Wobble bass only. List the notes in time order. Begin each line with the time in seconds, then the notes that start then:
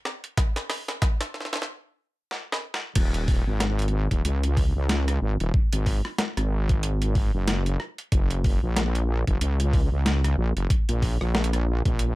2.96 D#1
3.47 G#1
4.11 D#1
4.25 C#2
4.76 C#2
5.22 G#1
5.40 D#1
5.73 G#1
6.37 G#1
7.34 F#1
8.12 F#1
8.63 A#1
9.27 F#1
9.41 C#2
9.92 C#2
10.38 A#1
10.56 F#1
10.89 A#1
11.21 A#1
11.86 A#1